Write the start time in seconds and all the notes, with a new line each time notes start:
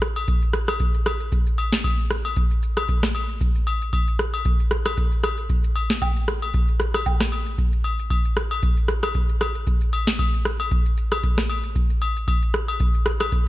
0.02 cross-stick, shaker
0.16 high agogo, shaker
0.28 kick, shaker
0.42 shaker
0.53 cross-stick, shaker
0.68 cross-stick, high agogo, shaker
0.80 kick, shaker
0.94 shaker
1.06 cross-stick, high agogo, shaker
1.20 shaker
1.32 kick, shaker
1.46 shaker
1.58 high agogo, shaker
1.73 snare, shaker
1.84 kick, high agogo, shaker
1.99 shaker
2.10 cross-stick, shaker
2.25 high agogo, shaker
2.36 kick, shaker
2.51 shaker
2.63 shaker
2.77 cross-stick, high agogo, shaker
2.88 kick, shaker
3.03 cross-stick, snare, shaker
3.15 high agogo, shaker
3.29 shaker
3.41 kick, shaker
3.55 shaker
3.67 high agogo, shaker
3.82 shaker
3.93 kick, high agogo, shaker
4.08 shaker
4.19 cross-stick, shaker
4.34 high agogo, shaker
4.45 kick, shaker
4.60 shaker
4.71 cross-stick, shaker
4.86 cross-stick, high agogo, shaker
4.97 kick, shaker
5.12 shaker
5.23 cross-stick, high agogo, shaker
5.37 shaker
5.50 kick, shaker
5.64 shaker
5.75 high agogo, shaker
5.90 snare, shaker
6.02 kick, high agogo, low woodblock, shaker
6.16 shaker
6.28 cross-stick, shaker
6.42 high agogo, shaker
6.54 kick, shaker
6.68 shaker
6.80 cross-stick, shaker
6.94 cross-stick, high agogo, shaker
7.06 kick, low woodblock, shaker
7.20 cross-stick, snare, shaker
7.32 high agogo, shaker
7.46 shaker
7.58 kick, shaker
7.73 shaker
7.84 high agogo, shaker
7.99 shaker
8.10 kick, high agogo, shaker
8.25 shaker
8.37 cross-stick, shaker
8.51 high agogo, shaker
8.63 kick, shaker
8.77 shaker
8.88 cross-stick, shaker
9.03 cross-stick, high agogo, shaker
9.15 kick, shaker
9.29 shaker
9.41 cross-stick, high agogo, shaker
9.55 shaker
9.67 kick, shaker
9.81 shaker
9.93 high agogo, shaker
10.07 snare, shaker
10.19 kick, high agogo, shaker
10.34 shaker
10.45 cross-stick, shaker
10.60 high agogo, shaker
10.71 kick, shaker
10.86 shaker
10.97 shaker
11.12 cross-stick, high agogo, shaker
11.23 kick, shaker
11.38 cross-stick, snare, shaker
11.50 high agogo, shaker
11.64 shaker
11.76 kick, shaker
11.90 shaker
12.01 high agogo, shaker
12.16 shaker
12.28 kick, high agogo, shaker
12.42 shaker
12.54 cross-stick, shaker
12.68 high agogo, shaker
12.80 kick, shaker
12.94 shaker
13.06 cross-stick, shaker
13.20 cross-stick, high agogo, shaker
13.32 kick, shaker